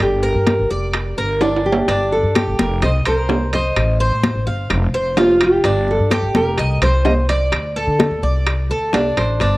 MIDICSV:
0, 0, Header, 1, 5, 480
1, 0, Start_track
1, 0, Time_signature, 4, 2, 24, 8
1, 0, Key_signature, -2, "minor"
1, 0, Tempo, 470625
1, 9765, End_track
2, 0, Start_track
2, 0, Title_t, "Cuban tres"
2, 0, Program_c, 0, 25
2, 0, Note_on_c, 0, 74, 66
2, 222, Note_off_c, 0, 74, 0
2, 234, Note_on_c, 0, 70, 73
2, 702, Note_off_c, 0, 70, 0
2, 720, Note_on_c, 0, 74, 59
2, 1185, Note_off_c, 0, 74, 0
2, 1202, Note_on_c, 0, 70, 72
2, 1433, Note_off_c, 0, 70, 0
2, 1441, Note_on_c, 0, 62, 59
2, 1905, Note_off_c, 0, 62, 0
2, 1921, Note_on_c, 0, 62, 67
2, 2385, Note_off_c, 0, 62, 0
2, 2399, Note_on_c, 0, 67, 55
2, 2864, Note_off_c, 0, 67, 0
2, 2876, Note_on_c, 0, 75, 65
2, 3110, Note_off_c, 0, 75, 0
2, 3120, Note_on_c, 0, 72, 65
2, 3584, Note_off_c, 0, 72, 0
2, 3603, Note_on_c, 0, 75, 68
2, 4066, Note_off_c, 0, 75, 0
2, 4081, Note_on_c, 0, 72, 73
2, 4545, Note_off_c, 0, 72, 0
2, 4557, Note_on_c, 0, 77, 61
2, 5023, Note_off_c, 0, 77, 0
2, 5040, Note_on_c, 0, 72, 71
2, 5271, Note_off_c, 0, 72, 0
2, 5278, Note_on_c, 0, 65, 68
2, 5743, Note_off_c, 0, 65, 0
2, 5759, Note_on_c, 0, 62, 71
2, 6224, Note_off_c, 0, 62, 0
2, 6243, Note_on_c, 0, 67, 67
2, 6706, Note_off_c, 0, 67, 0
2, 6722, Note_on_c, 0, 75, 68
2, 6952, Note_off_c, 0, 75, 0
2, 6961, Note_on_c, 0, 72, 67
2, 7425, Note_off_c, 0, 72, 0
2, 7437, Note_on_c, 0, 74, 72
2, 7903, Note_off_c, 0, 74, 0
2, 7917, Note_on_c, 0, 69, 67
2, 8383, Note_off_c, 0, 69, 0
2, 8395, Note_on_c, 0, 74, 57
2, 8862, Note_off_c, 0, 74, 0
2, 8881, Note_on_c, 0, 69, 63
2, 9112, Note_off_c, 0, 69, 0
2, 9118, Note_on_c, 0, 62, 65
2, 9583, Note_off_c, 0, 62, 0
2, 9602, Note_on_c, 0, 62, 65
2, 9765, Note_off_c, 0, 62, 0
2, 9765, End_track
3, 0, Start_track
3, 0, Title_t, "Nylon-string guitar"
3, 0, Program_c, 1, 24
3, 23, Note_on_c, 1, 67, 76
3, 1409, Note_off_c, 1, 67, 0
3, 1690, Note_on_c, 1, 67, 78
3, 2165, Note_on_c, 1, 69, 81
3, 2178, Note_off_c, 1, 67, 0
3, 2654, Note_off_c, 1, 69, 0
3, 2658, Note_on_c, 1, 70, 75
3, 2895, Note_off_c, 1, 70, 0
3, 2899, Note_on_c, 1, 72, 84
3, 2961, Note_off_c, 1, 72, 0
3, 3141, Note_on_c, 1, 70, 75
3, 3614, Note_off_c, 1, 70, 0
3, 3618, Note_on_c, 1, 72, 87
3, 5539, Note_on_c, 1, 67, 80
3, 5585, Note_off_c, 1, 72, 0
3, 6022, Note_off_c, 1, 67, 0
3, 6023, Note_on_c, 1, 69, 78
3, 6484, Note_off_c, 1, 69, 0
3, 6488, Note_on_c, 1, 70, 95
3, 6967, Note_off_c, 1, 70, 0
3, 6971, Note_on_c, 1, 72, 90
3, 7192, Note_off_c, 1, 72, 0
3, 7197, Note_on_c, 1, 75, 92
3, 7262, Note_off_c, 1, 75, 0
3, 7441, Note_on_c, 1, 74, 90
3, 8838, Note_off_c, 1, 74, 0
3, 9358, Note_on_c, 1, 72, 100
3, 9765, Note_off_c, 1, 72, 0
3, 9765, End_track
4, 0, Start_track
4, 0, Title_t, "Upright bass"
4, 0, Program_c, 2, 32
4, 0, Note_on_c, 2, 31, 94
4, 338, Note_off_c, 2, 31, 0
4, 355, Note_on_c, 2, 43, 71
4, 584, Note_off_c, 2, 43, 0
4, 603, Note_on_c, 2, 31, 79
4, 714, Note_off_c, 2, 31, 0
4, 724, Note_on_c, 2, 29, 68
4, 1177, Note_off_c, 2, 29, 0
4, 1202, Note_on_c, 2, 31, 76
4, 1884, Note_off_c, 2, 31, 0
4, 1917, Note_on_c, 2, 31, 90
4, 2259, Note_off_c, 2, 31, 0
4, 2280, Note_on_c, 2, 43, 75
4, 2507, Note_off_c, 2, 43, 0
4, 2522, Note_on_c, 2, 31, 77
4, 2634, Note_off_c, 2, 31, 0
4, 2641, Note_on_c, 2, 29, 70
4, 2867, Note_off_c, 2, 29, 0
4, 2878, Note_on_c, 2, 36, 96
4, 3106, Note_off_c, 2, 36, 0
4, 3123, Note_on_c, 2, 36, 72
4, 3804, Note_off_c, 2, 36, 0
4, 3839, Note_on_c, 2, 33, 92
4, 4180, Note_off_c, 2, 33, 0
4, 4204, Note_on_c, 2, 45, 70
4, 4429, Note_off_c, 2, 45, 0
4, 4437, Note_on_c, 2, 33, 75
4, 4551, Note_off_c, 2, 33, 0
4, 4556, Note_on_c, 2, 31, 76
4, 4785, Note_off_c, 2, 31, 0
4, 4794, Note_on_c, 2, 29, 102
4, 5023, Note_off_c, 2, 29, 0
4, 5028, Note_on_c, 2, 29, 75
4, 5717, Note_off_c, 2, 29, 0
4, 5750, Note_on_c, 2, 31, 90
4, 6096, Note_off_c, 2, 31, 0
4, 6117, Note_on_c, 2, 43, 76
4, 6342, Note_off_c, 2, 43, 0
4, 6348, Note_on_c, 2, 31, 77
4, 6466, Note_off_c, 2, 31, 0
4, 6472, Note_on_c, 2, 29, 79
4, 6703, Note_off_c, 2, 29, 0
4, 6713, Note_on_c, 2, 36, 99
4, 6943, Note_off_c, 2, 36, 0
4, 6948, Note_on_c, 2, 36, 80
4, 7637, Note_off_c, 2, 36, 0
4, 7672, Note_on_c, 2, 38, 88
4, 8017, Note_off_c, 2, 38, 0
4, 8030, Note_on_c, 2, 50, 69
4, 8261, Note_off_c, 2, 50, 0
4, 8272, Note_on_c, 2, 38, 82
4, 8381, Note_off_c, 2, 38, 0
4, 8387, Note_on_c, 2, 36, 76
4, 8848, Note_off_c, 2, 36, 0
4, 8870, Note_on_c, 2, 38, 66
4, 9089, Note_off_c, 2, 38, 0
4, 9111, Note_on_c, 2, 36, 73
4, 9330, Note_off_c, 2, 36, 0
4, 9351, Note_on_c, 2, 33, 75
4, 9570, Note_off_c, 2, 33, 0
4, 9597, Note_on_c, 2, 31, 92
4, 9765, Note_off_c, 2, 31, 0
4, 9765, End_track
5, 0, Start_track
5, 0, Title_t, "Drums"
5, 0, Note_on_c, 9, 65, 81
5, 1, Note_on_c, 9, 63, 30
5, 99, Note_off_c, 9, 65, 0
5, 103, Note_off_c, 9, 63, 0
5, 243, Note_on_c, 9, 63, 32
5, 345, Note_off_c, 9, 63, 0
5, 476, Note_on_c, 9, 65, 65
5, 476, Note_on_c, 9, 66, 52
5, 478, Note_on_c, 9, 60, 59
5, 480, Note_on_c, 9, 63, 85
5, 578, Note_off_c, 9, 65, 0
5, 578, Note_off_c, 9, 66, 0
5, 580, Note_off_c, 9, 60, 0
5, 582, Note_off_c, 9, 63, 0
5, 719, Note_on_c, 9, 63, 31
5, 724, Note_on_c, 9, 60, 33
5, 821, Note_off_c, 9, 63, 0
5, 826, Note_off_c, 9, 60, 0
5, 954, Note_on_c, 9, 65, 86
5, 957, Note_on_c, 9, 63, 34
5, 965, Note_on_c, 9, 60, 58
5, 1056, Note_off_c, 9, 65, 0
5, 1059, Note_off_c, 9, 63, 0
5, 1067, Note_off_c, 9, 60, 0
5, 1196, Note_on_c, 9, 60, 30
5, 1204, Note_on_c, 9, 63, 32
5, 1298, Note_off_c, 9, 60, 0
5, 1306, Note_off_c, 9, 63, 0
5, 1435, Note_on_c, 9, 65, 76
5, 1439, Note_on_c, 9, 60, 68
5, 1439, Note_on_c, 9, 61, 75
5, 1441, Note_on_c, 9, 63, 37
5, 1537, Note_off_c, 9, 65, 0
5, 1541, Note_off_c, 9, 60, 0
5, 1541, Note_off_c, 9, 61, 0
5, 1543, Note_off_c, 9, 63, 0
5, 1595, Note_on_c, 9, 65, 61
5, 1681, Note_on_c, 9, 60, 31
5, 1697, Note_off_c, 9, 65, 0
5, 1758, Note_on_c, 9, 66, 91
5, 1783, Note_off_c, 9, 60, 0
5, 1860, Note_off_c, 9, 66, 0
5, 1918, Note_on_c, 9, 60, 57
5, 1921, Note_on_c, 9, 63, 31
5, 1922, Note_on_c, 9, 65, 63
5, 2020, Note_off_c, 9, 60, 0
5, 2023, Note_off_c, 9, 63, 0
5, 2024, Note_off_c, 9, 65, 0
5, 2159, Note_on_c, 9, 60, 33
5, 2165, Note_on_c, 9, 63, 30
5, 2261, Note_off_c, 9, 60, 0
5, 2267, Note_off_c, 9, 63, 0
5, 2401, Note_on_c, 9, 65, 77
5, 2401, Note_on_c, 9, 66, 53
5, 2402, Note_on_c, 9, 60, 56
5, 2402, Note_on_c, 9, 75, 55
5, 2407, Note_on_c, 9, 63, 81
5, 2503, Note_off_c, 9, 65, 0
5, 2503, Note_off_c, 9, 66, 0
5, 2504, Note_off_c, 9, 60, 0
5, 2504, Note_off_c, 9, 75, 0
5, 2509, Note_off_c, 9, 63, 0
5, 2641, Note_on_c, 9, 65, 59
5, 2643, Note_on_c, 9, 60, 35
5, 2644, Note_on_c, 9, 63, 81
5, 2743, Note_off_c, 9, 65, 0
5, 2745, Note_off_c, 9, 60, 0
5, 2746, Note_off_c, 9, 63, 0
5, 2879, Note_on_c, 9, 65, 70
5, 2881, Note_on_c, 9, 60, 53
5, 2885, Note_on_c, 9, 63, 33
5, 2981, Note_off_c, 9, 65, 0
5, 2983, Note_off_c, 9, 60, 0
5, 2987, Note_off_c, 9, 63, 0
5, 3116, Note_on_c, 9, 65, 79
5, 3119, Note_on_c, 9, 75, 52
5, 3121, Note_on_c, 9, 60, 28
5, 3128, Note_on_c, 9, 63, 31
5, 3218, Note_off_c, 9, 65, 0
5, 3221, Note_off_c, 9, 75, 0
5, 3223, Note_off_c, 9, 60, 0
5, 3230, Note_off_c, 9, 63, 0
5, 3355, Note_on_c, 9, 66, 76
5, 3362, Note_on_c, 9, 60, 64
5, 3362, Note_on_c, 9, 61, 69
5, 3364, Note_on_c, 9, 63, 33
5, 3457, Note_off_c, 9, 66, 0
5, 3464, Note_off_c, 9, 60, 0
5, 3464, Note_off_c, 9, 61, 0
5, 3466, Note_off_c, 9, 63, 0
5, 3599, Note_on_c, 9, 65, 58
5, 3602, Note_on_c, 9, 63, 32
5, 3701, Note_off_c, 9, 65, 0
5, 3704, Note_off_c, 9, 63, 0
5, 3839, Note_on_c, 9, 65, 80
5, 3841, Note_on_c, 9, 75, 60
5, 3842, Note_on_c, 9, 60, 56
5, 3842, Note_on_c, 9, 63, 32
5, 3941, Note_off_c, 9, 65, 0
5, 3943, Note_off_c, 9, 75, 0
5, 3944, Note_off_c, 9, 60, 0
5, 3944, Note_off_c, 9, 63, 0
5, 4081, Note_on_c, 9, 63, 34
5, 4183, Note_off_c, 9, 63, 0
5, 4319, Note_on_c, 9, 63, 87
5, 4319, Note_on_c, 9, 65, 55
5, 4319, Note_on_c, 9, 66, 49
5, 4321, Note_on_c, 9, 60, 59
5, 4421, Note_off_c, 9, 63, 0
5, 4421, Note_off_c, 9, 65, 0
5, 4421, Note_off_c, 9, 66, 0
5, 4423, Note_off_c, 9, 60, 0
5, 4559, Note_on_c, 9, 60, 33
5, 4561, Note_on_c, 9, 63, 29
5, 4661, Note_off_c, 9, 60, 0
5, 4663, Note_off_c, 9, 63, 0
5, 4793, Note_on_c, 9, 60, 61
5, 4797, Note_on_c, 9, 65, 81
5, 4800, Note_on_c, 9, 75, 59
5, 4804, Note_on_c, 9, 63, 29
5, 4895, Note_off_c, 9, 60, 0
5, 4899, Note_off_c, 9, 65, 0
5, 4902, Note_off_c, 9, 75, 0
5, 4906, Note_off_c, 9, 63, 0
5, 5040, Note_on_c, 9, 60, 30
5, 5042, Note_on_c, 9, 63, 28
5, 5142, Note_off_c, 9, 60, 0
5, 5144, Note_off_c, 9, 63, 0
5, 5273, Note_on_c, 9, 60, 65
5, 5273, Note_on_c, 9, 61, 72
5, 5274, Note_on_c, 9, 65, 64
5, 5274, Note_on_c, 9, 66, 79
5, 5276, Note_on_c, 9, 63, 33
5, 5375, Note_off_c, 9, 60, 0
5, 5375, Note_off_c, 9, 61, 0
5, 5376, Note_off_c, 9, 65, 0
5, 5376, Note_off_c, 9, 66, 0
5, 5378, Note_off_c, 9, 63, 0
5, 5512, Note_on_c, 9, 60, 31
5, 5514, Note_on_c, 9, 65, 80
5, 5517, Note_on_c, 9, 75, 57
5, 5614, Note_off_c, 9, 60, 0
5, 5616, Note_off_c, 9, 65, 0
5, 5619, Note_off_c, 9, 75, 0
5, 5751, Note_on_c, 9, 60, 62
5, 5751, Note_on_c, 9, 65, 67
5, 5755, Note_on_c, 9, 63, 35
5, 5853, Note_off_c, 9, 60, 0
5, 5853, Note_off_c, 9, 65, 0
5, 5857, Note_off_c, 9, 63, 0
5, 5993, Note_on_c, 9, 60, 33
5, 5997, Note_on_c, 9, 63, 32
5, 6095, Note_off_c, 9, 60, 0
5, 6099, Note_off_c, 9, 63, 0
5, 6228, Note_on_c, 9, 60, 58
5, 6234, Note_on_c, 9, 65, 82
5, 6234, Note_on_c, 9, 66, 54
5, 6236, Note_on_c, 9, 63, 79
5, 6237, Note_on_c, 9, 75, 59
5, 6330, Note_off_c, 9, 60, 0
5, 6336, Note_off_c, 9, 65, 0
5, 6336, Note_off_c, 9, 66, 0
5, 6338, Note_off_c, 9, 63, 0
5, 6339, Note_off_c, 9, 75, 0
5, 6467, Note_on_c, 9, 60, 33
5, 6474, Note_on_c, 9, 63, 83
5, 6475, Note_on_c, 9, 65, 54
5, 6569, Note_off_c, 9, 60, 0
5, 6576, Note_off_c, 9, 63, 0
5, 6577, Note_off_c, 9, 65, 0
5, 6707, Note_on_c, 9, 60, 55
5, 6710, Note_on_c, 9, 65, 63
5, 6711, Note_on_c, 9, 63, 30
5, 6809, Note_off_c, 9, 60, 0
5, 6812, Note_off_c, 9, 65, 0
5, 6813, Note_off_c, 9, 63, 0
5, 6952, Note_on_c, 9, 60, 30
5, 6953, Note_on_c, 9, 65, 85
5, 6954, Note_on_c, 9, 63, 27
5, 6955, Note_on_c, 9, 75, 55
5, 7054, Note_off_c, 9, 60, 0
5, 7055, Note_off_c, 9, 65, 0
5, 7056, Note_off_c, 9, 63, 0
5, 7057, Note_off_c, 9, 75, 0
5, 7189, Note_on_c, 9, 60, 62
5, 7189, Note_on_c, 9, 61, 74
5, 7193, Note_on_c, 9, 63, 37
5, 7193, Note_on_c, 9, 66, 79
5, 7291, Note_off_c, 9, 60, 0
5, 7291, Note_off_c, 9, 61, 0
5, 7295, Note_off_c, 9, 63, 0
5, 7295, Note_off_c, 9, 66, 0
5, 7431, Note_on_c, 9, 63, 32
5, 7436, Note_on_c, 9, 65, 64
5, 7533, Note_off_c, 9, 63, 0
5, 7538, Note_off_c, 9, 65, 0
5, 7671, Note_on_c, 9, 60, 58
5, 7675, Note_on_c, 9, 63, 30
5, 7675, Note_on_c, 9, 65, 81
5, 7676, Note_on_c, 9, 75, 63
5, 7773, Note_off_c, 9, 60, 0
5, 7777, Note_off_c, 9, 63, 0
5, 7777, Note_off_c, 9, 65, 0
5, 7778, Note_off_c, 9, 75, 0
5, 7917, Note_on_c, 9, 63, 30
5, 8019, Note_off_c, 9, 63, 0
5, 8153, Note_on_c, 9, 60, 59
5, 8158, Note_on_c, 9, 63, 90
5, 8159, Note_on_c, 9, 65, 57
5, 8159, Note_on_c, 9, 66, 49
5, 8255, Note_off_c, 9, 60, 0
5, 8260, Note_off_c, 9, 63, 0
5, 8261, Note_off_c, 9, 65, 0
5, 8261, Note_off_c, 9, 66, 0
5, 8394, Note_on_c, 9, 60, 34
5, 8397, Note_on_c, 9, 63, 30
5, 8496, Note_off_c, 9, 60, 0
5, 8499, Note_off_c, 9, 63, 0
5, 8634, Note_on_c, 9, 65, 77
5, 8635, Note_on_c, 9, 75, 65
5, 8637, Note_on_c, 9, 60, 57
5, 8639, Note_on_c, 9, 63, 29
5, 8736, Note_off_c, 9, 65, 0
5, 8737, Note_off_c, 9, 75, 0
5, 8739, Note_off_c, 9, 60, 0
5, 8741, Note_off_c, 9, 63, 0
5, 8871, Note_on_c, 9, 60, 30
5, 8882, Note_on_c, 9, 63, 29
5, 8973, Note_off_c, 9, 60, 0
5, 8984, Note_off_c, 9, 63, 0
5, 9108, Note_on_c, 9, 60, 64
5, 9108, Note_on_c, 9, 61, 76
5, 9119, Note_on_c, 9, 65, 68
5, 9119, Note_on_c, 9, 66, 75
5, 9123, Note_on_c, 9, 63, 33
5, 9210, Note_off_c, 9, 60, 0
5, 9210, Note_off_c, 9, 61, 0
5, 9221, Note_off_c, 9, 65, 0
5, 9221, Note_off_c, 9, 66, 0
5, 9225, Note_off_c, 9, 63, 0
5, 9355, Note_on_c, 9, 60, 34
5, 9356, Note_on_c, 9, 65, 78
5, 9357, Note_on_c, 9, 75, 57
5, 9457, Note_off_c, 9, 60, 0
5, 9458, Note_off_c, 9, 65, 0
5, 9459, Note_off_c, 9, 75, 0
5, 9588, Note_on_c, 9, 60, 62
5, 9597, Note_on_c, 9, 65, 60
5, 9599, Note_on_c, 9, 63, 31
5, 9690, Note_off_c, 9, 60, 0
5, 9699, Note_off_c, 9, 65, 0
5, 9701, Note_off_c, 9, 63, 0
5, 9765, End_track
0, 0, End_of_file